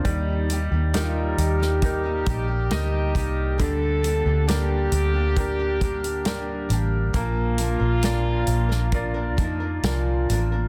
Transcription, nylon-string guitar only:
X:1
M:4/4
L:1/16
Q:1/4=68
K:Bb
V:1 name="Nylon-string guitar"
[E,G,B,EG]2 [G,B,EG] [B,EG] [E,G,B,EG]3 [B,EG] [G,B,EG] [B,EG] [G,B,EG] [B,EG] [G,B,EG]2 [G,B,EG]2 | [D,G,B,DG]2 [G,B,DG] [B,DG] [D,G,B,DG]3 [B,DG] [G,B,DG] [B,DG] [G,B,DG] [B,DG] [D,G,B,DG]2 [G,B,DG]2 | [B,,F,B,DB]2 [F,B,DB] [B,DB] [B,,F,B,DB]3 [B,DB] [F,B,DB] [B,DB] [F,B,DB] [B,DB] [B,,F,B,DB]2 [F,B,DB] [B,DB] |]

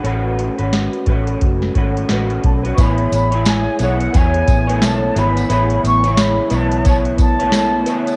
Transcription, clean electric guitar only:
X:1
M:4/4
L:1/16
Q:"Swing 16ths" 1/4=88
K:A
V:1 name="Clean electric guitar"
[A,CFB]3 [CFB]3 [A,CFB]4 [A,CFB]2 [A,CFB]3 [CFB] | [B,EGc]3 [EGc]3 [B,EGc]2 [B,EGc]3 [A,B,Ec]3 [B,EGc]2 | [B,EGc]3 [EGc]3 [B,Ec]2 [B,Ec]3 [A,B,Ec]3 [B,EGc]2 |]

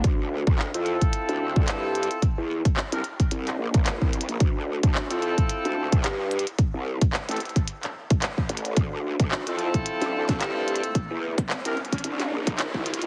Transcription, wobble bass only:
X:1
M:4/4
L:1/16
Q:"Swing 16ths" 1/4=110
K:Dm
V:1 name="Wobble bass" clef=bass
D,,3 D,, D,, F,,2 z2 D,,3 G,,3 z | z E,,2 z2 C,, z2 C,,2 B,,,3 C,,2 B,,, | D,,3 D,, D,, F,,2 z2 D,,3 G,,3 z | z C,,2 z2 A,,, z8 A,,,2 |
D,,3 D,, D,, F,,2 z2 D,,3 G,,3 z | z E,,2 z2 C,, z2 C,,2 B,,,3 C,,2 B,,, |]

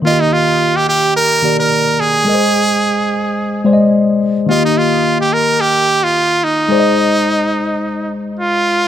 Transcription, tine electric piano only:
X:1
M:4/4
L:1/8
Q:"Swing 16ths" 1/4=108
K:Eb
V:1 name="Tine electric piano"
[E,B,FGe]4- [E,B,FGe] [E,B,Gd]3 | [A,ABce]4- [A,ABce] [A,Acde]3 | [E,B,Ge]8 | [A,Acde]8 |]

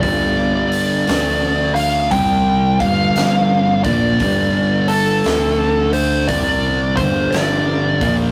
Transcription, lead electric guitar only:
X:1
M:4/4
L:1/16
Q:"Swing" 1/4=58
K:Gdor
V:1 name="Lead electric guitar"
d6 f2 g2 f4 d2- | d2 A4 c2 d2 c2 d3 z |]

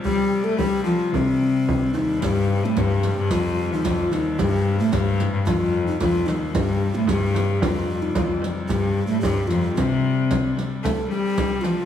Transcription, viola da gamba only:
X:1
M:2/4
L:1/16
Q:1/4=111
K:Cdor
V:1 name="Viola da gamba" clef=bass
G,3 A, G,2 F,2 | C,6 E,,2 | G,,3 A,, G,,3 G,, | F,,3 E,, F,,2 E,,2 |
G,,3 A,, G,,3 G,, | F,,/2 E,,/2 F,,3 F,,2 E,,2 | G,,3 A,, G,,4 | F,,4 F,,/2 E,,/2 F,, z2 |
G,,3 A,, G,,2 F,,2 | C,6 z2 | A,2 G,4 F,2 |]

